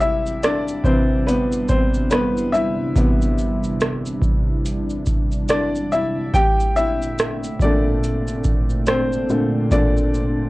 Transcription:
0.00 0.84 C3 medium
0.00 6.31 C3 medium
0.00 0.84 E3 soft
0.00 2.93 G3 medium
0.00 6.30 G3 medium
0.00 6.30 D4 medium
0.00 6.30 E4 medium
0.00 0.11 E4 medium
0.00 2.52 E5 medium
0.00 shaker soft
0.26 shaker soft
0.43 0.83 D4 medium
0.43 0.86 D5 medium
0.43 cross-stick loud
0.43 closed hi-hat soft
0.43 shaker medium
0.68 shaker soft
0.84 1.23 C3 soft
0.84 1.23 E3 soft
0.84 0.95 C4 medium
0.84 1.23 B4 medium
0.84 0.94 C5 medium
0.84 kick medium
0.84 shaker soft
1.26 1.67 B3 medium
1.26 1.70 B4 medium
1.26 closed hi-hat medium
1.26 shaker medium
1.52 shaker soft
1.69 2.09 C4 medium
1.69 2.12 C5 medium
1.69 kick medium
1.69 shaker soft
1.94 shaker soft
2.11 2.22 B3 medium
2.11 2.20 B4 medium
2.11 cross-stick loud
2.11 closed hi-hat medium
2.11 shaker medium
2.37 shaker soft
2.52 4.19 E4 medium
2.52 4.18 E5 medium
2.52 shaker soft
2.96 6.30 C3 medium
2.96 6.30 E3 medium
2.96 6.31 B3 medium
2.96 kick loud
2.96 closed hi-hat medium
2.96 shaker medium
3.22 shaker soft
3.38 shaker soft
3.64 shaker soft
3.81 cross-stick loud
3.81 closed hi-hat soft
3.81 shaker soft
4.06 shaker soft
4.22 kick medium
4.22 shaker soft
4.66 closed hi-hat medium
4.66 shaker medium
4.90 shaker soft
5.06 kick medium
5.06 shaker soft
5.32 shaker soft
5.49 5.90 D4 medium
5.49 5.93 D5 medium
5.49 cross-stick loud
5.49 closed hi-hat medium
5.49 shaker medium
5.75 shaker soft
5.92 6.32 E4 medium
5.92 6.35 E5 medium
5.92 shaker soft
6.34 10.49 A#2 medium
6.34 10.49 A3 medium
6.34 10.49 C4 medium
6.34 10.49 D4 medium
6.34 6.74 G4 medium
6.34 6.77 G5 loud
6.34 kick loud
6.34 closed hi-hat medium
6.34 shaker medium
6.60 shaker soft
6.76 7.58 E4 medium
6.76 7.63 E5 loud
6.76 shaker soft
7.02 shaker soft
7.19 cross-stick loud
7.19 closed hi-hat soft
7.19 shaker soft
7.44 shaker soft
7.59 8.21 A#2 medium
7.59 8.21 D3 soft
7.59 8.21 A3 medium
7.59 8.43 D4 medium
7.59 8.42 D5 medium
7.59 kick medium
7.59 shaker soft
8.04 closed hi-hat medium
8.04 shaker medium
8.28 shaker soft
8.44 kick medium
8.44 shaker soft
8.70 shaker soft
8.87 9.69 C4 medium
8.87 9.74 C5 medium
8.87 cross-stick loud
8.87 closed hi-hat medium
8.87 shaker medium
9.13 shaker soft
9.30 9.68 A#2 soft
9.30 9.68 D3 soft
9.30 9.68 A3 medium
9.30 shaker soft
9.71 10.49 A#2 medium
9.71 10.49 D3 soft
9.71 10.49 A3 medium
9.71 10.49 D4 medium
9.71 10.49 D5 medium
9.71 kick loud
9.71 closed hi-hat medium
9.71 shaker medium
9.97 shaker soft
10.14 shaker soft

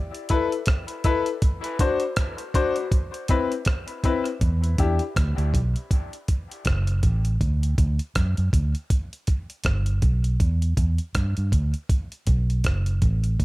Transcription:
0.15 closed hi-hat soft
0.29 0.51 E4 medium
0.29 0.51 A4 medium
0.29 0.51 B4 loud
0.29 kick medium
0.29 closed hi-hat medium
0.52 closed hi-hat soft
0.66 kick loud
0.66 cross-stick loud
0.66 closed hi-hat medium
0.88 closed hi-hat medium
1.04 1.25 E4 loud
1.04 1.26 A4 medium
1.04 1.26 B4 loud
1.04 kick medium
1.04 closed hi-hat medium
1.26 closed hi-hat medium
1.42 kick loud
1.42 closed hi-hat medium
1.64 closed hi-hat medium
1.79 2.00 D4 medium
1.79 2.01 F#4 medium
1.79 2.01 C5 loud
1.79 kick loud
1.79 closed hi-hat medium
2.00 closed hi-hat medium
2.16 kick loud
2.16 cross-stick loud
2.16 closed hi-hat loud
2.38 closed hi-hat medium
2.54 2.75 D4 medium
2.54 2.75 F#4 medium
2.54 2.76 C5 loud
2.54 kick medium
2.54 closed hi-hat medium
2.76 2.83 F#4 soft
2.76 2.83 C5 soft
2.76 closed hi-hat soft
2.92 kick loud
2.92 closed hi-hat loud
3.14 closed hi-hat soft
3.28 3.50 C4 medium
3.28 3.50 E4 medium
3.28 3.50 B4 loud
3.28 kick medium
3.28 closed hi-hat medium
3.52 closed hi-hat soft
3.65 kick loud
3.65 cross-stick loud
3.65 closed hi-hat medium
3.88 closed hi-hat medium
4.04 4.25 C4 medium
4.04 4.25 E4 medium
4.04 4.25 B4 medium
4.04 kick medium
4.04 closed hi-hat medium
4.25 closed hi-hat medium
4.41 4.75 E2 loud
4.41 kick loud
4.41 closed hi-hat medium
4.64 closed hi-hat medium
4.78 4.99 E2 medium
4.78 4.99 D4 medium
4.78 5.00 E4 medium
4.78 5.00 G4 medium
4.78 kick medium
4.78 closed hi-hat medium
4.99 closed hi-hat soft
5.16 5.36 D2 medium
5.16 kick loud
5.16 cross-stick loud
5.16 closed hi-hat medium
5.38 5.52 D2 medium
5.38 closed hi-hat soft
5.54 5.74 B1 medium
5.54 kick medium
5.54 closed hi-hat medium
5.76 closed hi-hat soft
5.91 kick loud
5.91 closed hi-hat medium
6.13 closed hi-hat soft
6.28 kick medium
6.28 closed hi-hat medium
6.51 closed hi-hat soft
6.65 7.00 F#1 medium
6.65 kick loud
6.65 cross-stick medium
6.65 closed hi-hat medium
6.87 closed hi-hat medium
7.03 7.37 A1 medium
7.03 kick medium
7.03 closed hi-hat medium
7.25 closed hi-hat soft
7.41 7.75 D2 loud
7.41 kick loud
7.41 closed hi-hat medium
7.63 closed hi-hat medium
7.78 7.98 D2 medium
7.78 kick medium
7.78 closed hi-hat medium
7.99 closed hi-hat soft
8.15 8.36 F#2 medium
8.15 kick loud
8.15 cross-stick loud
8.15 closed hi-hat medium
8.37 8.52 F#2 medium
8.37 closed hi-hat soft
8.53 8.73 D2 medium
8.53 kick medium
8.53 closed hi-hat medium
8.75 closed hi-hat soft
8.90 kick loud
8.90 closed hi-hat medium
9.13 closed hi-hat soft
9.27 kick medium
9.27 closed hi-hat medium
9.50 closed hi-hat soft
9.64 9.99 G1 medium
9.64 kick loud
9.64 cross-stick loud
9.64 closed hi-hat medium
9.86 closed hi-hat medium
10.02 10.36 B1 medium
10.02 kick medium
10.02 closed hi-hat medium
10.24 closed hi-hat medium
10.40 10.74 E2 loud
10.40 kick medium
10.40 closed hi-hat medium
10.62 closed hi-hat medium
10.77 10.97 E2 medium
10.77 kick medium
10.77 closed hi-hat medium
10.98 closed hi-hat soft
11.15 11.35 G2 medium
11.15 kick loud
11.15 cross-stick medium
11.15 closed hi-hat medium
11.37 11.51 G2 medium
11.37 closed hi-hat soft
11.52 11.72 D2 medium
11.52 kick medium
11.52 closed hi-hat medium
11.74 closed hi-hat soft
11.89 kick loud
11.89 closed hi-hat medium
12.12 closed hi-hat soft
12.27 12.61 B1 medium
12.27 kick medium
12.27 closed hi-hat medium
12.50 closed hi-hat soft
12.64 12.99 F#1 medium
12.64 kick loud
12.64 cross-stick medium
12.64 closed hi-hat medium
12.86 closed hi-hat soft
13.02 13.36 A1 medium
13.02 kick medium
13.02 closed hi-hat medium
13.24 closed hi-hat soft
13.40 13.45 D2 loud
13.40 kick loud
13.40 closed hi-hat medium

